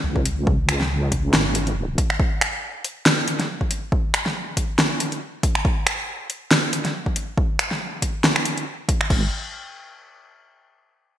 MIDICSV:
0, 0, Header, 1, 3, 480
1, 0, Start_track
1, 0, Tempo, 431655
1, 523, Time_signature, 4, 2, 24, 8
1, 12432, End_track
2, 0, Start_track
2, 0, Title_t, "Wobble bass"
2, 0, Program_c, 0, 39
2, 44, Note_on_c, 0, 37, 97
2, 1466, Note_off_c, 0, 37, 0
2, 1482, Note_on_c, 0, 32, 96
2, 2185, Note_off_c, 0, 32, 0
2, 10122, Note_on_c, 0, 32, 97
2, 10346, Note_off_c, 0, 32, 0
2, 12432, End_track
3, 0, Start_track
3, 0, Title_t, "Drums"
3, 175, Note_on_c, 9, 36, 64
3, 284, Note_on_c, 9, 42, 79
3, 286, Note_off_c, 9, 36, 0
3, 395, Note_off_c, 9, 42, 0
3, 523, Note_on_c, 9, 36, 116
3, 634, Note_off_c, 9, 36, 0
3, 763, Note_on_c, 9, 26, 74
3, 763, Note_on_c, 9, 42, 78
3, 874, Note_off_c, 9, 26, 0
3, 874, Note_off_c, 9, 42, 0
3, 896, Note_on_c, 9, 38, 37
3, 1008, Note_off_c, 9, 38, 0
3, 1243, Note_on_c, 9, 36, 64
3, 1244, Note_on_c, 9, 42, 75
3, 1354, Note_off_c, 9, 36, 0
3, 1355, Note_off_c, 9, 42, 0
3, 1485, Note_on_c, 9, 38, 119
3, 1596, Note_off_c, 9, 38, 0
3, 1723, Note_on_c, 9, 42, 78
3, 1834, Note_off_c, 9, 42, 0
3, 1856, Note_on_c, 9, 42, 34
3, 1967, Note_off_c, 9, 42, 0
3, 2202, Note_on_c, 9, 36, 103
3, 2204, Note_on_c, 9, 42, 78
3, 2313, Note_off_c, 9, 36, 0
3, 2315, Note_off_c, 9, 42, 0
3, 2336, Note_on_c, 9, 26, 50
3, 2442, Note_on_c, 9, 36, 118
3, 2447, Note_off_c, 9, 26, 0
3, 2553, Note_off_c, 9, 36, 0
3, 2684, Note_on_c, 9, 26, 76
3, 2684, Note_on_c, 9, 42, 76
3, 2796, Note_off_c, 9, 26, 0
3, 2796, Note_off_c, 9, 42, 0
3, 3164, Note_on_c, 9, 42, 73
3, 3275, Note_off_c, 9, 42, 0
3, 3402, Note_on_c, 9, 38, 121
3, 3513, Note_off_c, 9, 38, 0
3, 3643, Note_on_c, 9, 42, 75
3, 3754, Note_off_c, 9, 42, 0
3, 3776, Note_on_c, 9, 38, 35
3, 3776, Note_on_c, 9, 42, 35
3, 3887, Note_off_c, 9, 38, 0
3, 3887, Note_off_c, 9, 42, 0
3, 4013, Note_on_c, 9, 36, 60
3, 4122, Note_on_c, 9, 42, 75
3, 4125, Note_off_c, 9, 36, 0
3, 4233, Note_off_c, 9, 42, 0
3, 4361, Note_on_c, 9, 36, 109
3, 4472, Note_off_c, 9, 36, 0
3, 4603, Note_on_c, 9, 26, 80
3, 4603, Note_on_c, 9, 42, 75
3, 4714, Note_off_c, 9, 26, 0
3, 4714, Note_off_c, 9, 42, 0
3, 4736, Note_on_c, 9, 38, 33
3, 4847, Note_off_c, 9, 38, 0
3, 5081, Note_on_c, 9, 36, 58
3, 5082, Note_on_c, 9, 42, 75
3, 5193, Note_off_c, 9, 36, 0
3, 5193, Note_off_c, 9, 42, 0
3, 5322, Note_on_c, 9, 38, 111
3, 5433, Note_off_c, 9, 38, 0
3, 5563, Note_on_c, 9, 42, 78
3, 5674, Note_off_c, 9, 42, 0
3, 5695, Note_on_c, 9, 42, 36
3, 5806, Note_off_c, 9, 42, 0
3, 6042, Note_on_c, 9, 36, 103
3, 6042, Note_on_c, 9, 42, 74
3, 6153, Note_off_c, 9, 36, 0
3, 6153, Note_off_c, 9, 42, 0
3, 6175, Note_on_c, 9, 26, 53
3, 6282, Note_on_c, 9, 36, 106
3, 6286, Note_off_c, 9, 26, 0
3, 6393, Note_off_c, 9, 36, 0
3, 6523, Note_on_c, 9, 26, 82
3, 6523, Note_on_c, 9, 42, 82
3, 6634, Note_off_c, 9, 26, 0
3, 6634, Note_off_c, 9, 42, 0
3, 7002, Note_on_c, 9, 42, 73
3, 7114, Note_off_c, 9, 42, 0
3, 7242, Note_on_c, 9, 38, 113
3, 7353, Note_off_c, 9, 38, 0
3, 7483, Note_on_c, 9, 42, 79
3, 7594, Note_off_c, 9, 42, 0
3, 7614, Note_on_c, 9, 38, 36
3, 7614, Note_on_c, 9, 42, 35
3, 7725, Note_off_c, 9, 38, 0
3, 7725, Note_off_c, 9, 42, 0
3, 7854, Note_on_c, 9, 36, 58
3, 7962, Note_on_c, 9, 42, 77
3, 7965, Note_off_c, 9, 36, 0
3, 8073, Note_off_c, 9, 42, 0
3, 8201, Note_on_c, 9, 36, 110
3, 8313, Note_off_c, 9, 36, 0
3, 8443, Note_on_c, 9, 26, 83
3, 8443, Note_on_c, 9, 42, 83
3, 8554, Note_off_c, 9, 26, 0
3, 8554, Note_off_c, 9, 42, 0
3, 8575, Note_on_c, 9, 38, 34
3, 8686, Note_off_c, 9, 38, 0
3, 8921, Note_on_c, 9, 36, 58
3, 8922, Note_on_c, 9, 42, 83
3, 9032, Note_off_c, 9, 36, 0
3, 9034, Note_off_c, 9, 42, 0
3, 9162, Note_on_c, 9, 38, 108
3, 9273, Note_off_c, 9, 38, 0
3, 9295, Note_on_c, 9, 26, 64
3, 9402, Note_on_c, 9, 42, 80
3, 9406, Note_off_c, 9, 26, 0
3, 9513, Note_off_c, 9, 42, 0
3, 9536, Note_on_c, 9, 42, 37
3, 9647, Note_off_c, 9, 42, 0
3, 9881, Note_on_c, 9, 36, 101
3, 9883, Note_on_c, 9, 42, 78
3, 9993, Note_off_c, 9, 36, 0
3, 9994, Note_off_c, 9, 42, 0
3, 10016, Note_on_c, 9, 26, 55
3, 10122, Note_on_c, 9, 36, 105
3, 10123, Note_on_c, 9, 49, 83
3, 10127, Note_off_c, 9, 26, 0
3, 10233, Note_off_c, 9, 36, 0
3, 10234, Note_off_c, 9, 49, 0
3, 12432, End_track
0, 0, End_of_file